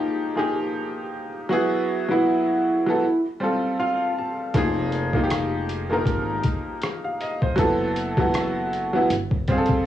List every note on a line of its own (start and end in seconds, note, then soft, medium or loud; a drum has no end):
0.00 0.36 F3 medium
0.00 0.37 A#3 medium
0.00 0.38 D#4 medium
0.00 0.27 G4 medium
0.00 1.52 G#4 loud
0.36 1.26 F3 medium
0.36 1.27 A#3 medium
0.36 1.27 D#4 medium
0.36 1.28 G4 medium
0.36 0.56 G#4 medium
1.49 1.95 F#3 medium
1.49 1.95 B3 medium
1.49 1.96 E4 medium
1.49 2.06 F#4 medium
1.49 1.96 G#4 loud
2.09 2.66 F#3 medium
2.09 2.66 B3 medium
2.09 2.67 E4 medium
2.09 3.20 E4 medium
2.09 2.67 F#4 medium
2.86 3.02 F#3 medium
2.86 3.03 B3 medium
2.86 3.04 E4 medium
2.86 3.04 A4 medium
3.40 4.30 G3 medium
3.40 4.31 C4 medium
3.40 4.31 F4 medium
3.40 4.32 A4 medium
3.79 4.13 F4 medium
3.79 4.14 F5 medium
4.19 4.53 A5 medium
4.54 6.02 F1 loud
4.54 4.99 F3 loud
4.54 5.00 A#3 medium
4.54 5.00 D#4 medium
4.54 5.01 G#4 loud
4.54 kick loud
4.54 closed hi-hat medium
4.92 closed hi-hat medium
5.13 5.70 F3 medium
5.13 5.71 A#3 medium
5.13 5.71 D#4 medium
5.13 5.21 F4 medium
5.13 kick medium
5.24 5.75 G4 medium
5.30 cross-stick medium
5.30 closed hi-hat medium
5.69 closed hi-hat medium
5.90 6.33 F3 medium
5.90 6.33 A#3 medium
5.90 6.34 D#4 medium
5.90 6.35 A#4 medium
6.06 6.39 G#1 medium
6.06 kick medium
6.06 closed hi-hat medium
6.44 kick medium
6.44 closed hi-hat medium
6.82 cross-stick medium
6.82 closed hi-hat medium
7.04 7.19 F5 medium
7.21 7.41 D#5 medium
7.21 closed hi-hat medium
7.42 7.78 C5 medium
7.42 kick medium
7.56 9.06 F#1 loud
7.56 8.02 F#3 medium
7.56 8.02 B3 medium
7.56 8.03 E4 medium
7.56 8.03 A4 loud
7.56 kick loud
7.56 closed hi-hat medium
7.96 closed hi-hat medium
8.17 8.74 F#3 medium
8.17 8.75 B3 medium
8.17 8.75 E4 medium
8.17 8.76 F#4 loud
8.17 kick medium
8.34 cross-stick medium
8.34 closed hi-hat medium
8.73 closed hi-hat medium
8.93 9.10 F#3 medium
8.93 9.10 B3 medium
8.93 9.11 E4 medium
8.93 9.11 F#4 medium
9.10 9.76 G1 loud
9.10 closed hi-hat medium
9.31 kick medium
9.48 9.86 G3 medium
9.48 9.86 C4 medium
9.48 9.86 F4 medium
9.48 9.57 G#4 medium
9.48 kick medium
9.48 closed hi-hat medium
9.58 9.86 A4 medium
9.66 kick medium
9.66 closed hi-hat soft